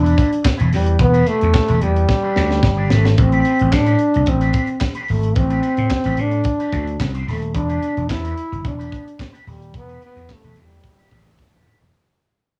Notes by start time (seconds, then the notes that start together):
Already playing: E1 D4
0.02 G3 D4 E4 B4, closed hi-hat
0.16 G3 D4 E4 B4, kick, closed hi-hat
0.30 muted clean electric guitar stroke, closed hi-hat
0.43 muted clean electric guitar stroke, kick, snare, clap
0.57 E1 G3 D4 E4 B4, closed hi-hat
0.70 E2 G3, muted clean electric guitar stroke, snare, open hi-hat
0.85 muted clean electric guitar stroke, closed hi-hat
0.98 E1 B3, muted clean electric guitar stroke, kick, closed hi-hat
1.12 G3 D4 E4 B4, closed hi-hat
1.25 G3 A3 D4 E4 B4, closed hi-hat
1.40 E2, muted clean electric guitar stroke, closed hi-hat
1.54 kick, snare, clap
1.67 E1 G3 D4 E4 B4, closed hi-hat
1.81 E2 G3, muted clean electric guitar stroke, closed hi-hat
1.95 muted clean electric guitar stroke, closed hi-hat
2.08 kick, snare
2.23 G3 D4 E4 B4
2.35 D2 G3 D4 E4 D5, snare
2.49 muted clean electric guitar stroke, snare
2.62 G1, muted clean electric guitar stroke, kick, snare
2.77 G3 D4 E4 D5
2.89 G#1 G3 D4 E4 B4, snare
2.94 A3
3.05 muted clean electric guitar stroke, snare
3.17 A1 C4, muted clean electric guitar stroke, kick, closed hi-hat
3.32 C4 D4 G4 B4, closed hi-hat
3.44 C4 D4 G4 B4, closed hi-hat
3.59 A1, muted clean electric guitar stroke, closed hi-hat
3.71 A2 D4, muted clean electric guitar stroke, kick, snare, clap
3.85 C4 D4 G4 B4, closed hi-hat
3.99 muted clean electric guitar stroke, closed hi-hat
4.13 C2, muted clean electric guitar stroke, closed hi-hat
4.26 A1 C4, muted clean electric guitar stroke, kick, closed hi-hat
4.40 C4 D4 G4 B4, closed hi-hat
4.53 C4 D4 G4 B4, kick, closed hi-hat
4.67 muted clean electric guitar stroke, closed hi-hat
4.81 muted clean electric guitar stroke, kick, snare, clap
4.95 C4 D4 G4 B4, closed hi-hat
5.08 G#1 A3, muted clean electric guitar stroke, open hi-hat
5.22 muted clean electric guitar stroke, closed hi-hat
5.35 A1 C4, muted clean electric guitar stroke, kick, closed hi-hat
5.49 C4 D4 G4 B4, closed hi-hat
5.62 C4 D4 G4 B4, closed hi-hat
5.77 A2, muted clean electric guitar stroke, closed hi-hat
5.89 muted clean electric guitar stroke, kick, snare, clap
6.04 A1 C4 D4 G4 B4, closed hi-hat
6.17 A2 D4, muted clean electric guitar stroke, closed hi-hat
6.31 muted clean electric guitar stroke, closed hi-hat
6.44 muted clean electric guitar stroke, kick, closed hi-hat
6.59 C4 D4 G4 B4, closed hi-hat
6.72 D2 C4 D4 G4 C5, kick, closed hi-hat
6.87 muted clean electric guitar stroke, closed hi-hat
7.00 C2, muted clean electric guitar stroke, kick, snare, clap
7.14 C4 D4 G4 C5, closed hi-hat
7.27 D#1 A3 C4 D4 G4 B4, snare, open hi-hat
7.41 muted clean electric guitar stroke, closed hi-hat
7.54 E1 D4, muted clean electric guitar stroke, kick, closed hi-hat
7.68 B3 D4 G4 B4, closed hi-hat
7.81 B3 D4 G4 B4, closed hi-hat
7.96 E1, muted clean electric guitar stroke, closed hi-hat
8.09 E2 E4, muted clean electric guitar stroke, kick, snare, clap
8.23 B3 D4 G4 B4, closed hi-hat
8.36 muted clean electric guitar stroke, closed hi-hat
8.52 G1, muted clean electric guitar stroke, closed hi-hat
8.64 E1 D4, muted clean electric guitar stroke, kick, closed hi-hat
8.78 B3 D4 G4 B4, closed hi-hat
8.90 B3 D4 G4 B4, kick, closed hi-hat
9.05 muted clean electric guitar stroke, closed hi-hat
9.18 muted clean electric guitar stroke, kick, snare, clap
9.32 B3 D4 G4 B4, closed hi-hat
9.45 D#1 G3, muted clean electric guitar stroke, open hi-hat
9.60 muted clean electric guitar stroke, closed hi-hat
9.74 E1 B3, muted clean electric guitar stroke, kick, closed hi-hat
9.88 B3 D4 G4 B4, closed hi-hat
10.01 B3 D4 G4 B4, closed hi-hat
10.05 B3
10.16 E2, muted clean electric guitar stroke, closed hi-hat
10.29 muted clean electric guitar stroke, kick, snare, clap
10.33 A3
10.43 E1 B3 D4 G4 B4, closed hi-hat
10.56 E2, muted clean electric guitar stroke, closed hi-hat
10.62 G3
10.71 muted clean electric guitar stroke, closed hi-hat
10.83 muted clean electric guitar stroke, kick, closed hi-hat
10.98 B3 D4 G4 B4, closed hi-hat
11.11 A1 B3 D4 G4 D5, kick, closed hi-hat
11.25 muted clean electric guitar stroke, closed hi-hat
11.38 G1, muted clean electric guitar stroke, kick, snare
11.53 E1 B3 D4 G4 D5, high tom
11.66 B3 D4 G4 B4, mid tom
11.81 E1, muted clean electric guitar stroke, floor tom